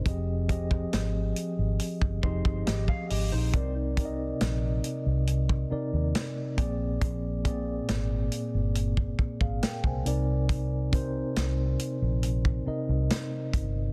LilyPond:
<<
  \new Staff \with { instrumentName = "Clean electric guitar" } { \time 4/4 \key c \minor \tempo 4 = 69 r2 r8 <ees' c''>8 <g' ees''>16 <aes' f''>16 <g' ees''>16 <ees' c''>16~ | <ees' c''>16 r2. r8. | r1 | r1 | }
  \new Staff \with { instrumentName = "Tine electric piano" } { \time 4/4 \key c \minor << { r1 | r1 | r2 r8. <aes' f''>16 <bes' g''>16 <c'' aes''>8 r16 | r1 | } \\ { <f c' g' aes' ees''>8 <f c' g' aes' ees''>4. r8 <f c' g' aes' ees''>4 r8 | <c c' ees' bes' d''>8 <c c' ees' bes' d'' ees''>4. r8 <c c' ees' bes' d''>4 <bes, bes c' aes' d''>8~ | <bes, bes c' aes' d''>8 <bes, bes c' aes' d''>4. r4. <c c' ees' bes' d''>8~ | <c c' ees' bes' d''>8 <c c' ees' bes' c''>4. r8 <c c' ees' bes' ees''>4 r8 | } >> }
  \new Staff \with { instrumentName = "Fingered electric bass" } { \clef bass \time 4/4 \key c \minor f,,4 aes,,8 r16 aes,,16 r16 g,,16 f,,16 g,,16 aes,,16 r16 aes,,16 bes,,16 | c,4 bes,,8 r16 c,8. r16 ees,16 r8 bes,,8 | bes,,4 aes,,8 r16 g,,8. r16 aes,,16 r16 c,16 c,8~ | c,4 c,8 r16 bes,,8. r16 c,16 r8 g,,8 | }
  \new DrumStaff \with { instrumentName = "Drums" } \drummode { \time 4/4 <hh bd>8 <hh bd>16 bd16 <hh sn>8 hh8 hh16 bd16 bd16 bd16 <hh sn>16 bd16 hho8 | <hh bd>8 <hh bd>8 <hh sn>8 hh8 hh16 bd8. <hh sn>8 <hh bd>8 | <hh bd>8 <hh bd>8 <hh sn>8 hh8 hh16 bd16 bd16 bd16 <hh sn>16 bd16 hh8 | <hh bd>8 <hh bd>8 <hh sn>8 hh8 hh16 bd8. <hh sn>8 <hh bd>8 | }
>>